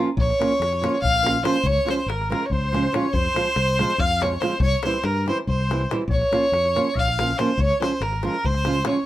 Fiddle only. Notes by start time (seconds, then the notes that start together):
0.19 C#5
1.02 F5
1.45 C5
1.67 C#5
1.90 C5
2.09 A#4
2.31 A#4
2.45 C#5
2.52 C5
2.93 C#5
3.13 C5
4.00 F5
4.22 C#5
4.40 C5
4.62 C#5
4.84 C5
5.04 A#4
5.29 C5
5.48 C5
6.11 C#5
6.99 F5
7.38 C5
7.60 C#5
7.82 C5
8.02 A#4
8.26 A#4
8.46 C5
8.87 C#5